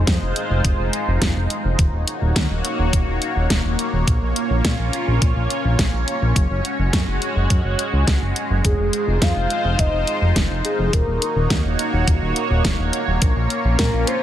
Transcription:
Already playing: analog synth pad G#3 D#4 F4 C5
0.07 analog synth bass F2, kick, snare, closed hi-hat
0.22 analog synth bass F1
0.36 closed hi-hat
0.50 analog synth bass F1
0.64 analog synth bass F1, kick, closed hi-hat
0.79 analog synth bass F1
0.93 closed hi-hat
1.08 analog synth bass F1
1.22 analog synth bass F1, kick, snare, closed hi-hat
1.36 analog synth bass F1
1.50 closed hi-hat
1.65 analog synth bass F1
1.79 analog synth bass D#1, analog synth pad A#3 F#4 C#5, kick, closed hi-hat
1.93 analog synth bass D#1
2.08 closed hi-hat
2.22 analog synth bass D#1
2.36 analog synth bass D#2, kick, snare, closed hi-hat
2.50 analog synth bass D#1
2.65 closed hi-hat
2.79 analog synth bass D#1
2.93 analog synth bass D#1, kick, closed hi-hat
3.07 analog synth bass D#1
3.22 closed hi-hat
3.36 analog synth bass D#1
3.50 analog synth bass D#1, kick, snare, closed hi-hat
3.64 analog synth bass D#1
3.79 closed hi-hat
3.93 analog synth bass D#1
4.07 analog synth bass A#1, analog synth pad C#4 F4, kick, closed hi-hat
4.22 analog synth bass A#1
4.36 closed hi-hat
4.50 analog synth bass A#1
4.65 analog synth bass A#2, kick, snare, closed hi-hat
4.79 analog synth bass A#1
4.93 closed hi-hat
5.08 analog synth bass A#1
5.22 analog synth bass A#1, kick, closed hi-hat
5.36 analog synth bass A#1
5.50 closed hi-hat
5.65 analog synth bass A#1
5.79 kick, snare, closed hi-hat
5.93 analog synth bass A#1
6.08 closed hi-hat
6.22 analog synth bass A#1
6.36 analog synth bass F#1, analog synth pad G#3 F#4, kick, closed hi-hat
6.50 analog synth bass F#1
6.65 closed hi-hat
6.79 analog synth bass F#1
6.93 analog synth bass F#2, kick, snare, closed hi-hat
7.07 analog synth bass F#1
7.22 closed hi-hat
7.36 analog synth bass F#1
7.50 analog synth bass F#2, kick, closed hi-hat
7.64 analog synth bass F#1
7.79 closed hi-hat
7.93 analog synth bass C#2
8.07 analog synth bass C#2, kick, snare, closed hi-hat
8.22 analog synth bass F#1
8.36 closed hi-hat
8.50 analog synth bass F#1
8.64 analog synth bass F1, analog synth pad D#4 F4 C5, soft synth lead G#4, kick, closed hi-hat
8.79 analog synth bass F1
8.93 closed hi-hat
9.07 analog synth bass F1
9.22 analog synth bass F2, soft synth lead F5, kick, snare, closed hi-hat
9.36 analog synth bass F1
9.50 closed hi-hat
9.64 analog synth bass F1
9.79 analog synth bass F1, soft synth lead D#5, kick, closed hi-hat
9.93 analog synth bass F1
10.07 closed hi-hat
10.22 analog synth bass F1
10.36 analog synth bass F1, kick, snare, closed hi-hat
10.50 analog synth bass F1
10.65 soft synth lead G#4, closed hi-hat
10.79 analog synth bass F1
10.93 analog synth bass D#1, analog synth pad A#3 F#4 C#5, soft synth lead A#4, kick, closed hi-hat
11.07 analog synth bass D#1
11.22 closed hi-hat
11.36 analog synth bass D#1
11.50 analog synth bass D#2, kick, snare, closed hi-hat
11.64 analog synth bass D#1
11.79 closed hi-hat
11.93 analog synth bass D#1
12.07 analog synth bass D#1, kick, closed hi-hat
12.22 analog synth bass D#1
12.36 closed hi-hat
12.50 analog synth bass D#1
12.65 analog synth bass D#1, kick, snare, closed hi-hat
12.79 analog synth bass D#1
12.93 closed hi-hat
13.07 analog synth bass D#1
13.22 analog synth bass A#1, analog synth pad C#4 F4, kick, closed hi-hat
13.36 analog synth bass A#1
13.50 closed hi-hat
13.65 analog synth bass A#1
13.79 analog synth bass A#2, soft synth lead A#4, kick, snare, closed hi-hat
13.93 analog synth bass A#1
14.07 soft synth lead C5, closed hi-hat

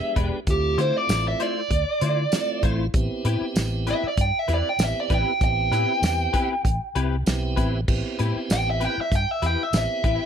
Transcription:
Already playing: tonewheel organ G#3 B3 D4 G4, lead electric guitar E5
0.16 fingered electric bass E1, clean electric guitar G#3 D4 G4 B4, kick, closed hi-hat
0.47 fingered electric bass D2, tonewheel organ A3 C4 E4 F4, lead electric guitar G4, kick, closed hi-hat
0.78 fingered electric bass D3, clean electric guitar A3 E4 F4 C5, lead electric guitar C5, closed hi-hat
0.97 lead electric guitar D5
1.09 fingered electric bass A1, snare, closed hi-hat, tambourine
1.28 lead electric guitar E5
1.40 clean electric guitar A3 E4 F4 C5, lead electric guitar D5, closed hi-hat
1.70 fingered electric bass D2, kick, closed hi-hat
2.01 fingered electric bass D3, clean electric guitar A3 E4 F4 C5, closed hi-hat
2.32 tonewheel organ A3 C4 E4 F4, snare, closed hi-hat, tambourine
2.63 fingered electric bass A1, clean electric guitar A3 E4 F4 C5, kick, closed hi-hat
2.94 fingered electric bass A1, tonewheel organ B3 C4 E4 G4, kick, closed hi-hat
3.25 fingered electric bass A2, clean electric guitar C4 E4 G4 B4, closed hi-hat
3.41 muted fingered electric bass stroke
3.56 fingered electric bass A1, snare, closed hi-hat, tambourine
3.87 clean electric guitar C4 E4 G4 B4, lead electric guitar E5, snare, closed hi-hat
4.03 muted fingered electric bass stroke
4.08 lead electric guitar D5
4.17 fingered electric bass G2, lead electric guitar G5, kick, closed hi-hat
4.39 lead electric guitar E5
4.48 fingered electric bass E2, clean electric guitar C4 E4 G4 B4, closed hi-hat
4.54 lead electric guitar D5
4.69 lead electric guitar G5
4.79 fingered electric bass A1, tonewheel organ B3 C4 E4 G4, snare, closed hi-hat, tambourine
4.84 lead electric guitar E5
5.00 lead electric guitar D5
5.10 fingered electric bass A1, clean electric guitar C4 E4 G4 B4, kick, closed hi-hat
5.14 lead electric guitar G5
5.41 fingered electric bass A1, tonewheel organ B3 C4 E4 G4, lead electric guitar G5, kick, closed hi-hat
5.71 fingered electric bass A2, clean electric guitar C4 E4 G4 B4, closed hi-hat
6.02 fingered electric bass E2, snare, closed hi-hat, tambourine
6.33 clean electric guitar C4 E4 G4 B4, kick, closed hi-hat
6.65 fingered electric bass A1, kick, closed hi-hat
6.95 fingered electric bass C2, clean electric guitar C4 E4 G4 B4, closed hi-hat
7.26 fingered electric bass B1, tonewheel organ B3 C4 E4 G4, snare, closed hi-hat, tambourine
7.56 fingered electric bass A1, clean electric guitar C4 E4 G4 B4, kick, closed hi-hat
7.88 fingered electric bass A1, tonewheel organ B3 C4 E4 G4, kick, crash
8.19 fingered electric bass A2, clean electric guitar C4 E4 G4 B4, closed hi-hat
8.36 muted fingered electric bass stroke
8.50 fingered electric bass A1, lead electric guitar G5, snare, closed hi-hat, tambourine
8.70 lead electric guitar E5
8.80 clean electric guitar C4 E4 G4 B4, closed hi-hat
8.85 lead electric guitar G5
8.98 lead electric guitar E5, muted fingered electric bass stroke
9.12 fingered electric bass G2, lead electric guitar G5, kick, closed hi-hat
9.31 lead electric guitar E5
9.42 fingered electric bass E2, clean electric guitar C4 E4 G4 B4, lead electric guitar G5, closed hi-hat
9.63 lead electric guitar E5
9.73 fingered electric bass A1, tonewheel organ B3 C4 E4 G4, snare, closed hi-hat, tambourine
9.78 lead electric guitar E5
10.04 fingered electric bass A1, clean electric guitar C4 E4 G4 B4, kick, closed hi-hat

